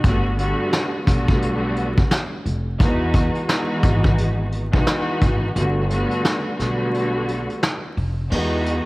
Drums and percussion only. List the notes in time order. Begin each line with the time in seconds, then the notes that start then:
0.04 kick, closed hi-hat
0.39 closed hi-hat
0.73 snare, closed hi-hat
1.07 kick, snare, closed hi-hat
1.28 kick
1.42 closed hi-hat
1.76 closed hi-hat
1.98 kick
2.11 snare, closed hi-hat
2.46 closed hi-hat
2.80 kick, closed hi-hat
3.14 kick, closed hi-hat
3.35 closed hi-hat
3.49 snare, closed hi-hat
3.83 kick, closed hi-hat
4.04 kick
4.18 closed hi-hat
4.52 closed hi-hat
4.74 kick
4.87 snare, closed hi-hat
5.22 kick, closed hi-hat
5.56 closed hi-hat
5.90 closed hi-hat
6.11 closed hi-hat
6.25 snare, closed hi-hat
6.59 snare, closed hi-hat
6.94 closed hi-hat
7.28 closed hi-hat
7.50 closed hi-hat
7.63 snare, closed hi-hat
7.97 open hi-hat
8.32 crash
8.66 closed hi-hat